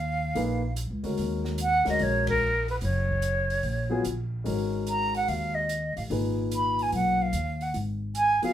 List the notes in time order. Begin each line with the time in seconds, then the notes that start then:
Already playing: D#2 F5
0.35 A#1 A#3 D#4 G#4 B4, open hi-hat
0.76 closed hi-hat
0.91 C#2
1.03 D2 G#3 C#4 F#4 A#4, open hi-hat
1.17 D#2, open hi-hat
1.45 snare
1.58 closed hi-hat
1.62 F#5
1.85 D2 G#3 C#4 F#4 A#4, snare, open hi-hat
1.89 D#5
1.99 A#1 C#5, open hi-hat
2.27 A#4, kick, ride
2.68 B4, open hi-hat
2.81 F#1 C#5, open hi-hat
3.09 kick
3.22 closed hi-hat
3.50 open hi-hat
3.63 A#1, open hi-hat
3.89 F#3 B3 F4 G#4
4.05 A#1, closed hi-hat
4.44 G#1 G#3 C#4 F#4 A#4, open hi-hat
4.87 A#5, closed hi-hat
5.14 F#5, open hi-hat
5.28 D#2 F5, open hi-hat
5.55 D#5
5.69 closed hi-hat
5.96 A1 F5, open hi-hat
6.10 G#1 A#2 D#4 G#4 B4, open hi-hat
6.51 closed hi-hat
6.56 B5
6.79 G#5, open hi-hat
6.92 B1 F#5, open hi-hat
7.22 F5
7.33 D#2, closed hi-hat
7.61 F#5, open hi-hat
7.74 G#1, open hi-hat
8.15 G#5, closed hi-hat
8.42 F#3 B3 F4 G#4 F5, muted upright bass stroke, open hi-hat